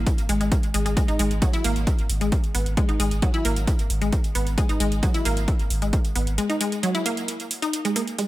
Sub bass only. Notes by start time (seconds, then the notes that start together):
0.18 G#1
0.29 G#1
0.41 G#1
0.74 G#1
0.86 G#1
1.08 G#1
1.19 G#1
1.31 G#1
1.64 G#1
1.76 G#1
1.98 G#1
2.09 G#1
2.21 G#1
2.55 G#1
2.66 G#1
2.89 G#1
3.00 G#1
3.11 G#1
3.45 G#1
3.56 G#1
3.79 G#1
3.90 G#1
4.01 G#1
4.35 G#1
4.47 G#1
4.69 G#1
4.80 G#1
4.92 G#1
5.25 G#1
5.37 G#1
5.59 G#1
5.70 G#1
5.82 G#1
6.15 G#1
6.27 G#1